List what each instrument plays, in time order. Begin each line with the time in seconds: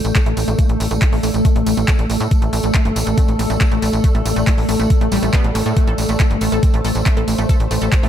Already playing: ambient pad A3 A4 D5, synth drone A3 A4
0.01 analog synth bass A1, ambient pad E6, closed hi-hat, tambourine
0.15 synth arpeggio sound A3, kick, clap, closed hi-hat
0.26 analog synth bass A1, synth arpeggio sound A3, closed hi-hat
0.37 analog synth bass A1, open hi-hat, tambourine
0.48 analog synth bass A1, wobble bass A3, synth arpeggio sound A3, closed hi-hat, tambourine
0.59 wobble bass A3, synth arpeggio sound A3, kick, closed hi-hat, tambourine
0.69 analog synth bass A1, closed hi-hat
0.80 analog synth bass A1, synth arpeggio sound A3, open hi-hat, tambourine
0.91 analog synth bass A1, synth arpeggio sound A3, closed hi-hat, tambourine
1.01 kick, clap, closed hi-hat, tambourine
1.13 analog synth bass A1, synth arpeggio sound A3, wobble bass A3, open hi-hat
1.23 analog synth bass A1, wobble bass A3, synth arpeggio sound A3, open hi-hat, tambourine
1.34 analog synth bass A1, closed hi-hat, tambourine
1.45 synth arpeggio sound A3, kick, closed hi-hat, tambourine
1.56 analog synth bass A1, synth arpeggio sound A3, closed hi-hat
1.66 analog synth bass A1, open hi-hat, tambourine
1.77 analog synth bass A1, synth arpeggio sound A3, closed hi-hat, tambourine
1.88 synth arpeggio sound A3, kick, clap, closed hi-hat
1.99 analog synth bass A1, closed hi-hat
2.10 analog synth bass A1, synth arpeggio sound A3, open hi-hat, tambourine
2.20 analog synth bass A2, synth arpeggio sound A3, closed hi-hat, tambourine
2.31 kick, closed hi-hat, tambourine
2.42 analog synth bass A1, synth arpeggio sound A3, closed hi-hat
2.53 analog synth bass A1, synth arpeggio sound A3, open hi-hat, tambourine
2.63 analog synth bass A1, closed hi-hat, tambourine
2.74 synth arpeggio sound A3, kick, clap, closed hi-hat, tambourine
2.85 analog synth bass G1, synth arpeggio sound A3, closed hi-hat
2.96 analog synth bass A1, open hi-hat, tambourine
3.07 analog synth bass A1, synth arpeggio sound A3, closed hi-hat, tambourine
3.18 synth arpeggio sound A3, wobble bass C4, kick, closed hi-hat, tambourine
3.28 analog synth bass A1, closed hi-hat
3.39 analog synth bass A1, synth arpeggio sound A3, open hi-hat, tambourine
3.50 analog synth bass A1, wobble bass A3, synth arpeggio sound A3, closed hi-hat, tambourine
3.61 wobble bass A3, kick, clap, closed hi-hat
3.72 analog synth bass A1, synth arpeggio sound A3, closed hi-hat
3.82 analog synth bass A1, synth arpeggio sound A3, open hi-hat, tambourine
3.93 analog synth bass A1, closed hi-hat, tambourine
4.04 synth arpeggio sound A3, kick, closed hi-hat, tambourine
4.15 analog synth bass A1, synth arpeggio sound A3, closed hi-hat
4.25 analog synth bass A1, wobble bass A3, open hi-hat, tambourine
4.36 analog synth bass A1, synth arpeggio sound A3, wobble bass A3, closed hi-hat, tambourine
4.47 synth arpeggio sound A3, kick, clap, closed hi-hat
4.58 analog synth bass A1, open hi-hat
4.69 analog synth bass A1, synth arpeggio sound A3, open hi-hat, tambourine
4.79 analog synth bass A1, synth arpeggio sound A3, closed hi-hat, tambourine
4.90 kick, closed hi-hat
5.01 analog synth bass A1, synth arpeggio sound A3, closed hi-hat
5.12 analog synth bass A1, synth arpeggio sound G3, open hi-hat, tambourine
5.23 analog synth bass A1, wobble bass G3, synth arpeggio sound A3, closed hi-hat, tambourine
5.33 synth arpeggio sound B3, kick, clap, closed hi-hat, tambourine
5.44 analog synth bass A1, closed hi-hat
5.55 analog synth bass A1, synth arpeggio sound A3, open hi-hat, tambourine, zap
5.66 analog synth bass A2, synth arpeggio sound A3, closed hi-hat, tambourine
5.76 synth arpeggio sound A3, synth drone C5, kick, closed hi-hat, tambourine
5.87 analog synth bass A1, synth arpeggio sound A4, closed hi-hat
5.98 analog synth bass A1, open hi-hat, tambourine
6.08 analog synth bass A1, synth arpeggio sound A3, closed hi-hat, tambourine
6.20 synth arpeggio sound A4, kick, clap, closed hi-hat, tambourine
6.31 analog synth bass G1, closed hi-hat
6.41 analog synth bass A1, synth arpeggio sound A3, open hi-hat, tambourine
6.52 analog synth bass A1, synth arpeggio sound A4, closed hi-hat, tambourine
6.63 wobble bass C4, kick, closed hi-hat, tambourine
6.74 analog synth bass A1, synth arpeggio sound A3, closed hi-hat
6.85 analog synth bass A1, synth arpeggio sound A4, open hi-hat, tambourine
6.92 analog synth bass A1, ambient pad C6, closed hi-hat, tambourine
7.06 synth arpeggio sound A3, kick, clap, closed hi-hat, tambourine
7.17 analog synth bass A1, synth arpeggio sound A4, closed hi-hat
7.28 analog synth bass A1, open hi-hat, tambourine
7.38 analog synth bass A1, synth arpeggio sound A3, wobble bass A3, closed hi-hat, tambourine
7.49 wobble bass A3, synth arpeggio sound A4, kick, closed hi-hat, tambourine
7.60 analog synth bass A1, closed hi-hat
7.71 analog synth bass A1, synth arpeggio sound A3, open hi-hat, tambourine
7.81 analog synth bass A1, synth arpeggio sound A4, closed hi-hat, tambourine
7.92 kick, clap, closed hi-hat, tambourine
8.03 analog synth bass A1, synth arpeggio sound A3, wobble bass A3, open hi-hat